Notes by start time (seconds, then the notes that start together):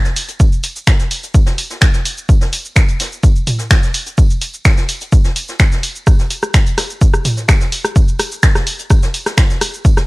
0.05 snare, shaker
0.16 open hi-hat, tambourine, shaker
0.28 closed hi-hat, shaker
0.40 kick, tambourine, shaker
0.52 shaker
0.63 open hi-hat, tambourine, shaker
0.76 shaker
0.87 finger snap, kick, snare, tambourine, shaker
1.00 snare, shaker
1.11 open hi-hat, tambourine, shaker
1.23 closed hi-hat, shaker
1.34 kick, tambourine, shaker
1.46 snare, shaker
1.58 open hi-hat, tambourine, shaker
1.70 snare, shaker
1.81 finger snap, kick, snare, tambourine, shaker
1.93 snare, shaker
2.05 open hi-hat, tambourine, shaker
2.18 shaker
2.29 kick, tambourine, shaker
2.41 snare, shaker
2.53 open hi-hat, tambourine, shaker
2.65 shaker
2.76 finger snap, kick, snare, tambourine, shaker
2.88 closed hi-hat, shaker
3.00 snare, open hi-hat, tambourine, shaker
3.12 shaker
3.23 kick, tambourine, shaker
3.36 shaker
3.47 mid tom, open hi-hat, tambourine, shaker
3.58 snare, shaker
3.71 finger snap, kick, snare, tambourine, shaker
3.83 snare, shaker
3.94 open hi-hat, tambourine, shaker
4.06 closed hi-hat, shaker
4.18 kick, tambourine, shaker
4.30 shaker
4.41 open hi-hat, tambourine, shaker
4.54 shaker
4.65 finger snap, kick, snare, tambourine, shaker
4.77 snare, shaker
4.89 open hi-hat, tambourine, shaker
5.01 closed hi-hat, shaker
5.12 kick, tambourine, shaker
5.24 snare, shaker
5.36 open hi-hat, tambourine, shaker
5.48 snare, shaker
5.59 finger snap, kick, snare, tambourine, shaker
5.72 snare, shaker
5.83 open hi-hat, tambourine, shaker
5.96 shaker
6.07 kick, cross-stick, tambourine, shaker
6.19 snare, shaker
6.30 open hi-hat, tambourine, shaker
6.43 cross-stick, shaker
6.54 finger snap, kick, snare, tambourine, shaker
6.66 closed hi-hat, shaker
6.77 cross-stick, snare, open hi-hat, tambourine, shaker
6.90 shaker
7.01 kick, tambourine, shaker
7.14 cross-stick, shaker
7.25 mid tom, open hi-hat, tambourine, shaker
7.37 snare, shaker
7.48 finger snap, kick, cross-stick, snare, tambourine, shaker
7.61 snare, shaker
7.72 open hi-hat, tambourine, shaker
7.85 cross-stick, closed hi-hat, shaker
7.96 kick, tambourine, shaker
8.08 shaker
8.19 cross-stick, open hi-hat, tambourine, shaker
8.32 shaker
8.43 finger snap, kick, snare, tambourine, shaker
8.55 cross-stick, snare, shaker
8.67 open hi-hat, tambourine, shaker
8.79 closed hi-hat, shaker
8.90 kick, cross-stick, tambourine, shaker
9.03 snare, shaker
9.14 open hi-hat, tambourine, shaker
9.26 cross-stick, snare, shaker
9.37 finger snap, kick, snare, tambourine, shaker
9.50 snare, shaker
9.61 cross-stick, open hi-hat, tambourine, shaker
9.74 shaker
9.85 kick, tambourine, shaker
9.97 cross-stick, snare, shaker